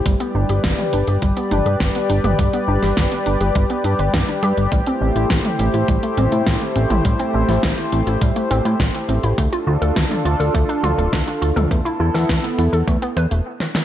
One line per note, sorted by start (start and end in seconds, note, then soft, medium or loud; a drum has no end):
0.00 9.34 G4 medium
0.06 0.16 G1 loud
0.06 0.15 G3 loud
0.06 4.68 G3 medium
0.06 4.68 B4 medium
0.06 4.68 D5 medium
0.06 kick loud
0.06 closed hi-hat loud
0.20 0.30 B3 loud
0.20 closed hi-hat soft
0.35 0.45 G1 loud
0.35 0.44 D4 medium
0.49 0.60 G1 medium
0.49 0.59 G4 medium
0.49 closed hi-hat soft
0.64 0.74 G1 loud
0.64 0.74 G3 medium
0.64 kick loud
0.64 snare loud
0.64 closed hi-hat loud
0.78 0.88 B3 medium
0.78 closed hi-hat soft
0.78 mid tom medium
0.93 1.03 G1 medium
0.93 0.99 D4 medium
0.93 closed hi-hat medium
1.07 1.18 G1 medium
1.07 1.13 G4 medium
1.07 closed hi-hat soft
1.22 1.33 G1 loud
1.22 1.32 G3 loud
1.22 kick loud
1.22 closed hi-hat medium
1.37 1.43 B3 loud
1.37 closed hi-hat soft
1.51 1.62 G1 medium
1.51 1.61 D4 medium
1.51 closed hi-hat medium
1.51 mid tom medium
1.66 1.76 G2 medium
1.66 1.72 G4 medium
1.66 closed hi-hat soft
1.80 1.91 G1 loud
1.80 1.90 G3 medium
1.80 kick loud
1.80 snare loud
1.80 closed hi-hat medium
1.95 2.05 B3 medium
1.95 closed hi-hat soft
2.10 2.20 G1 medium
2.10 2.15 D4 medium
2.10 closed hi-hat medium
2.24 2.35 G1 medium
2.24 2.30 G4 medium
2.24 closed hi-hat soft
2.24 mid tom medium
2.39 2.49 G1 loud
2.39 2.48 G3 loud
2.39 kick loud
2.39 closed hi-hat medium
2.53 2.63 B3 loud
2.53 closed hi-hat soft
2.68 2.78 G1 loud
2.68 2.77 D4 medium
2.82 2.93 G1 medium
2.82 2.92 G4 medium
2.82 snare soft
2.82 closed hi-hat soft
2.97 3.07 G1 loud
2.97 3.07 G3 medium
2.97 kick loud
2.97 snare loud
2.97 closed hi-hat medium
3.12 3.21 B3 medium
3.12 closed hi-hat soft
3.26 3.37 G1 medium
3.26 3.32 D4 medium
3.26 closed hi-hat medium
3.41 3.51 G1 medium
3.41 3.47 G4 medium
3.41 closed hi-hat soft
3.55 3.66 G1 loud
3.55 3.65 G3 loud
3.55 kick loud
3.55 closed hi-hat medium
3.70 3.76 B3 loud
3.70 closed hi-hat soft
3.84 3.95 G2 loud
3.84 3.90 D4 medium
3.84 closed hi-hat medium
3.99 4.09 G1 medium
3.99 4.09 B4 medium
3.99 closed hi-hat soft
4.14 4.24 G1 loud
4.14 4.19 D4 loud
4.14 kick loud
4.14 snare loud
4.14 closed hi-hat medium
4.28 4.34 D4 medium
4.28 closed hi-hat soft
4.43 4.53 G2 medium
4.43 4.49 G4 loud
4.43 closed hi-hat medium
4.57 4.68 G1 medium
4.57 4.71 G3 medium
4.57 closed hi-hat soft
4.72 4.82 A1 loud
4.72 4.82 G3 loud
4.72 9.34 A3 medium
4.72 9.34 E4 medium
4.72 9.34 C5 medium
4.72 kick loud
4.72 closed hi-hat medium
4.86 4.96 C4 loud
4.86 closed hi-hat soft
5.01 5.11 A1 loud
5.01 5.11 C4 medium
5.15 5.26 A1 medium
5.15 5.25 E4 medium
5.15 closed hi-hat soft
5.30 5.41 A1 loud
5.30 5.40 G3 medium
5.30 kick loud
5.30 snare loud
5.30 closed hi-hat medium
5.45 5.54 A3 medium
5.45 closed hi-hat soft
5.45 mid tom medium
5.59 5.70 A1 medium
5.59 5.65 C4 medium
5.59 closed hi-hat medium
5.74 5.84 A1 medium
5.74 5.80 E4 medium
5.74 closed hi-hat soft
5.88 5.99 A1 loud
5.88 5.98 G3 loud
5.88 kick loud
5.88 closed hi-hat medium
6.03 6.09 A3 loud
6.03 closed hi-hat soft
6.17 6.28 A1 medium
6.17 6.27 C4 loud
6.17 closed hi-hat medium
6.17 mid tom medium
6.32 6.42 A2 medium
6.32 6.38 E4 medium
6.32 closed hi-hat soft
6.47 6.57 A1 loud
6.47 6.56 G3 medium
6.47 kick loud
6.47 snare loud
6.47 closed hi-hat medium
6.61 6.71 A3 medium
6.61 closed hi-hat soft
6.76 6.86 A1 medium
6.76 6.82 C4 medium
6.76 closed hi-hat medium
6.90 7.01 A1 medium
6.90 6.96 E4 medium
6.90 closed hi-hat soft
6.90 mid tom medium
7.05 7.15 A1 loud
7.05 7.14 G3 loud
7.05 kick loud
7.05 closed hi-hat medium
7.19 7.29 C4 loud
7.19 closed hi-hat soft
7.34 7.44 A1 loud
7.34 7.44 C4 medium
7.49 7.59 A1 medium
7.49 7.58 E4 medium
7.49 snare soft
7.49 closed hi-hat soft
7.63 7.74 A1 loud
7.63 7.73 G3 medium
7.63 kick loud
7.63 snare loud
7.63 closed hi-hat medium
7.78 7.87 A3 medium
7.78 closed hi-hat soft
7.92 8.03 A1 medium
7.92 7.98 C4 medium
7.92 closed hi-hat medium
8.07 8.17 A1 medium
8.07 8.13 E4 medium
8.07 closed hi-hat soft
8.21 8.32 A1 loud
8.21 8.31 G3 loud
8.21 kick loud
8.21 closed hi-hat medium
8.36 8.42 A3 loud
8.36 closed hi-hat soft
8.51 8.61 A1 medium
8.51 8.60 C4 medium
8.51 closed hi-hat medium
8.65 8.75 A2 medium
8.65 8.71 E4 medium
8.65 closed hi-hat soft
8.80 8.90 A1 loud
8.80 8.89 G3 medium
8.80 kick loud
8.80 snare loud
8.80 closed hi-hat medium
8.94 9.04 A3 medium
8.94 closed hi-hat soft
9.09 9.19 A1 medium
9.09 9.15 C4 medium
9.09 closed hi-hat medium
9.23 9.34 A1 medium
9.23 9.29 E4 medium
9.23 closed hi-hat soft
9.38 9.48 D2 loud
9.38 9.47 A3 loud
9.38 11.69 D4 medium
9.38 11.69 F4 medium
9.38 11.69 A4 medium
9.38 kick loud
9.38 closed hi-hat medium
9.53 9.62 F4 loud
9.53 closed hi-hat soft
9.67 9.77 D2 loud
9.67 9.77 F4 medium
9.82 9.92 D2 medium
9.82 9.91 A4 medium
9.82 closed hi-hat soft
9.96 10.07 D2 loud
9.96 10.06 A3 medium
9.96 kick loud
9.96 snare loud
9.96 closed hi-hat medium
10.11 10.20 D4 medium
10.11 closed hi-hat soft
10.11 mid tom medium
10.25 10.35 D2 medium
10.25 10.31 F4 medium
10.25 closed hi-hat medium
10.40 10.50 D2 medium
10.40 10.45 A4 medium
10.40 closed hi-hat soft
10.54 10.65 D2 loud
10.54 10.64 A3 loud
10.54 kick loud
10.54 closed hi-hat medium
10.69 10.75 D4 loud
10.69 closed hi-hat soft
10.83 10.94 D2 medium
10.83 10.93 F4 loud
10.83 closed hi-hat medium
10.83 mid tom medium
10.98 11.08 D1 medium
10.98 11.04 A4 medium
10.98 closed hi-hat soft
11.13 11.23 D2 loud
11.13 11.22 A3 medium
11.13 kick loud
11.13 snare loud
11.13 closed hi-hat medium
11.27 11.37 D4 medium
11.27 closed hi-hat soft
11.42 11.52 D2 medium
11.42 11.47 F4 medium
11.42 closed hi-hat medium
11.56 11.67 D2 medium
11.56 11.62 A4 medium
11.56 closed hi-hat soft
11.56 mid tom medium
11.71 11.81 E2 loud
11.71 11.80 A3 loud
11.71 13.44 B3 medium
11.71 13.44 E4 medium
11.71 13.44 A4 medium
11.71 kick loud
11.71 closed hi-hat loud
11.85 11.95 E4 loud
11.85 closed hi-hat soft
12.00 12.10 E2 loud
12.00 12.09 E4 medium
12.14 12.25 E2 medium
12.14 12.24 A4 medium
12.14 snare soft
12.14 closed hi-hat soft
12.29 12.40 E2 loud
12.29 12.39 A3 medium
12.29 kick loud
12.29 snare loud
12.29 closed hi-hat loud
12.44 12.53 B3 medium
12.44 closed hi-hat soft
12.58 12.69 E2 loud
12.58 12.64 E4 medium
12.58 closed hi-hat medium
12.73 12.83 E2 medium
12.73 12.78 A4 medium
12.73 closed hi-hat soft
12.87 12.98 E2 loud
12.87 12.97 A3 loud
12.87 kick loud
12.87 closed hi-hat medium
13.02 13.08 B3 loud
13.02 closed hi-hat soft
13.17 13.27 E2 loud
13.17 13.26 B4 medium
13.17 closed hi-hat medium
13.31 13.41 E1 medium
13.31 13.41 A3 medium
13.31 closed hi-hat soft
13.60 snare medium
13.75 snare medium